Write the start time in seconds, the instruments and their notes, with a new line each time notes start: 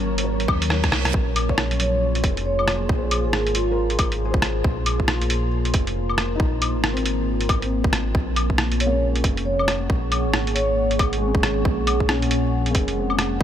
Already playing: detuned saw bass G#1, ambient pad F#3 A#3 C#4 A#4 C#5, synth texture C#4 C#5
0.18 felt piano A#4, closed hi-hat
0.24 felt piano C#5, reverse cymbal
0.40 closed hi-hat
0.48 detuned saw bass D#2, kick, claves
0.62 closed hi-hat
0.70 cross-stick
0.84 kick, cross-stick, closed hi-hat
0.92 detuned saw bass C2, cross-stick
1.05 cross-stick, closed hi-hat
1.13 detuned saw bass A#1, ambient pad A#3 F4 G#4 C6, kick
1.36 closed hi-hat, claves
1.49 felt piano C#5, kick
1.58 cross-stick
1.71 closed hi-hat
1.80 vibraphone C#5, closed hi-hat
2.15 closed hi-hat
2.24 detuned saw bass F1, kick, closed hi-hat
2.37 closed hi-hat
2.46 vibraphone C#5
2.59 claves
2.68 cross-stick, closed hi-hat, claves
2.89 detuned saw bass A#1, felt piano G#4, kick
2.97 felt piano C5
3.03 felt piano C#5
3.11 closed hi-hat, claves
3.25 detuned saw bass G#1, vibraphone G#4
3.33 cross-stick
3.47 closed hi-hat
3.55 vibraphone F4, closed hi-hat
3.68 vibraphone F4, felt piano A#4
3.90 closed hi-hat
3.99 kick, closed hi-hat, claves
4.12 closed hi-hat
4.25 felt piano G#4
4.30 felt piano C5, kick
4.42 cross-stick, closed hi-hat
4.64 detuned saw bass A#1, ambient pad A#4, kick
4.86 closed hi-hat, claves
5.00 kick
5.08 cross-stick
5.22 closed hi-hat
5.30 closed hi-hat
5.65 closed hi-hat
5.74 detuned saw bass F1, kick, closed hi-hat
5.87 closed hi-hat
6.09 claves
6.18 cross-stick, closed hi-hat, claves
6.36 felt piano D#4
6.40 detuned saw bass A#1, kick
6.62 closed hi-hat, claves
6.75 detuned saw bass G#1
6.84 cross-stick
6.93 felt piano C4
6.97 closed hi-hat
7.06 closed hi-hat
7.41 closed hi-hat
7.49 kick, closed hi-hat, claves
7.62 felt piano C4, closed hi-hat
7.84 kick
7.93 cross-stick, closed hi-hat
8.14 detuned saw bass A#1, ambient pad G#4 F#5 C#6, kick
8.36 closed hi-hat, claves
8.50 kick
8.58 cross-stick
8.72 closed hi-hat
8.80 vibraphone C#5, closed hi-hat
8.87 felt piano A#3
8.92 felt piano C#4
9.16 closed hi-hat
9.24 detuned saw bass F1, kick, closed hi-hat
9.37 closed hi-hat
9.45 vibraphone C#5
9.59 claves
9.68 cross-stick, closed hi-hat, claves
9.90 detuned saw bass A#1, kick
10.12 closed hi-hat, claves
10.25 detuned saw bass G#1
10.34 cross-stick
10.47 closed hi-hat
10.55 vibraphone C#5, closed hi-hat
10.91 closed hi-hat
10.99 kick, closed hi-hat, claves
11.13 closed hi-hat
11.18 felt piano G#3
11.23 felt piano C4
11.28 felt piano C#4
11.35 kick
11.43 cross-stick, closed hi-hat
11.65 detuned saw bass A#1, kick
11.87 closed hi-hat, claves
12.00 kick
12.09 felt piano C#4, cross-stick
12.22 closed hi-hat
12.31 closed hi-hat
12.66 closed hi-hat
12.71 felt piano A#3
12.75 detuned saw bass F1, felt piano C#4, kick, closed hi-hat
12.88 closed hi-hat
12.93 felt piano G#3
12.98 felt piano C4
13.10 claves
13.19 cross-stick, closed hi-hat, claves